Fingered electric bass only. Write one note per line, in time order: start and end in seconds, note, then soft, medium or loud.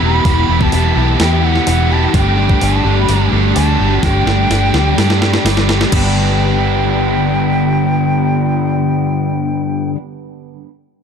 0.01 0.20 E1 medium
0.25 0.44 E1 medium
0.49 0.68 E1 medium
0.73 0.92 E1 medium
0.96 1.15 B1 medium
1.20 1.58 E2 medium
1.67 2.06 E1 medium
2.14 2.53 G1 loud
2.61 2.81 G1 medium
2.85 3.04 G1 medium
3.09 3.28 G1 medium
3.33 3.52 G1 medium
3.56 3.76 D2 medium
3.80 3.99 G1 medium
4.03 4.22 G1 medium
4.26 4.46 G1 medium
4.50 4.70 G1 medium
4.73 4.93 D2 medium
4.98 5.37 G2 medium
5.45 5.84 G1 medium
5.93 9.91 G1 medium